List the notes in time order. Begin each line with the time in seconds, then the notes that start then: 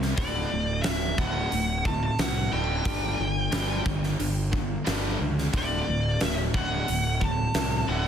Already playing: C2 C3 G3
0.02 snare
0.17 D1 D2 A2 D3 D5, kick, open hi-hat
0.51 D1 D2 A2
0.82 D2 A2 E5, snare, open hi-hat
0.87 D1
1.18 D1 D2 A2 D3 F#5, kick
1.52 D1 D2 A2, open hi-hat
1.85 D2 A2 A5, kick
2.03 A5
2.19 C2 D2 A2 F#5, snare, open hi-hat
2.52 D1 D2 A2 D3 G5
2.85 G1 G2 D3 G3, kick, open hi-hat
3.20 G1 G2 D3
3.51 G1 G2 D3 G3, snare, open hi-hat
3.85 G1 G2 D3, kick
4.03 snare
4.19 G1 G2 D3, open hi-hat
4.52 G2 D3, kick
4.85 G1 G2 D3 G3, snare, open hi-hat
5.19 C#2 G2 D3
5.38 snare
5.53 D1 D2 A2 D3, kick, open hi-hat
5.58 D5
5.87 D1 D2 A2
6.21 D1 D2 A2 E5, snare, open hi-hat
6.54 D1 D2 A2 D3 F#5, kick
6.88 D1 D2 A2, open hi-hat
7.21 D2 A2 A5, kick
7.54 C2 D2 A2, snare, open hi-hat
7.88 D1 D2 A2 D3 F#5